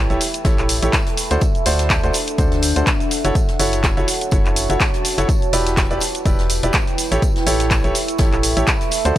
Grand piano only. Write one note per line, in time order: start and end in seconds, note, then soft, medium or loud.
0.10 0.19 E4 medium
0.10 0.19 G4 medium
0.10 0.19 A4 medium
0.10 0.19 C#5 medium
0.45 0.79 E4 medium
0.45 0.79 G4 medium
0.45 0.79 A4 medium
0.45 0.79 C#5 medium
0.82 0.92 E4 medium
0.82 0.92 G4 medium
0.82 0.92 A4 medium
0.82 0.92 C#5 medium
1.31 1.40 D4 medium
1.31 1.40 F#4 medium
1.31 1.40 A4 medium
1.31 1.40 C5 loud
1.66 2.00 D4 medium
1.66 2.00 F#4 medium
1.66 2.00 A4 medium
1.66 2.00 C5 loud
2.04 2.13 D4 medium
2.04 2.13 F#4 medium
2.04 2.13 A4 medium
2.04 2.13 C5 medium
2.39 2.73 D4 medium
2.39 2.73 F#4 medium
2.39 2.73 A4 medium
2.39 2.73 C5 medium
2.76 2.85 D4 medium
2.76 2.85 F#4 medium
2.76 2.85 A4 medium
2.76 2.85 C5 medium
3.25 3.34 E4 medium
3.25 3.34 F#4 medium
3.25 3.34 A4 medium
3.25 3.34 C#5 loud
3.59 3.94 E4 loud
3.59 3.94 F#4 medium
3.59 3.94 A4 medium
3.59 3.94 C#5 loud
3.97 4.06 E4 medium
3.97 4.06 F#4 medium
3.97 4.06 A4 medium
3.97 4.06 C#5 medium
4.32 4.66 E4 medium
4.32 4.66 F#4 medium
4.32 4.66 A4 medium
4.32 4.66 C#5 medium
4.70 4.79 E4 medium
4.70 4.79 F#4 medium
4.70 4.79 A4 medium
4.70 4.79 C#5 medium
5.18 5.27 E4 medium
5.18 5.27 F#4 medium
5.18 5.27 A4 medium
5.18 5.27 C#5 loud
5.53 5.87 E4 loud
5.53 5.87 G4 medium
5.53 5.87 B4 medium
5.53 5.87 D5 loud
5.91 6.00 E4 medium
5.91 6.00 G4 medium
5.91 6.00 B4 medium
5.91 6.00 D5 medium
6.26 6.60 E4 medium
6.26 6.60 G4 medium
6.26 6.60 B4 medium
6.26 6.60 D5 medium
6.63 6.72 E4 medium
6.63 6.72 G4 medium
6.63 6.72 B4 medium
6.63 6.72 D5 medium
7.12 7.21 E4 medium
7.12 7.21 G4 medium
7.12 7.21 A4 medium
7.12 7.21 C#5 loud
7.46 7.81 E4 loud
7.46 7.81 G4 medium
7.46 7.81 A4 medium
7.46 7.81 C#5 loud
7.84 7.93 E4 medium
7.84 7.93 G4 medium
7.84 7.93 A4 medium
7.84 7.93 C#5 medium
8.19 8.54 E4 medium
8.19 8.54 G4 medium
8.19 8.54 A4 medium
8.19 8.54 C#5 medium
8.57 8.66 E4 medium
8.57 8.66 G4 medium
8.57 8.66 A4 medium
8.57 8.66 C#5 medium
9.05 9.14 D4 medium
9.05 9.14 F#4 medium
9.05 9.14 A4 medium
9.05 9.14 C5 loud